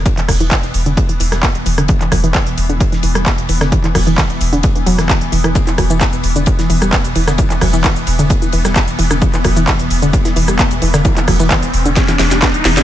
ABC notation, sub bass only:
X:1
M:4/4
L:1/16
Q:1/4=131
K:Clyd
V:1 name="Sub bass" clef=bass
z2 E,,, E,,, z E,,, E,,, E,,, z2 E,,, E,,, z E,,, E,,, E,,, | z2 E,,, E,,, z E,,, E,,, E,,, z2 E,,, E,,, z E,,, E,,, E,,, | z2 E,,, E,,, z E,,, E,,, E,,, z2 E,,, E,,, z E,,, E,,, E,,, | z2 E,,, E,,, z E,,, E,,, E,,, z2 E,,, E,,, z E,,, E,,, E,,, |
z2 E,,, E,,, z E,,, E,,, E,,, z2 E,,, E,,, z E,,, E,,, E,,, | z2 E,,, E,,, z E,,, E,,, E,,, z2 E,,, E,,, z E,,, E,,, E,,, | z2 E,,, E,,, z E,,, E,,, E,,, z2 E,,, E,,, z E,,, E,,, E,,, |]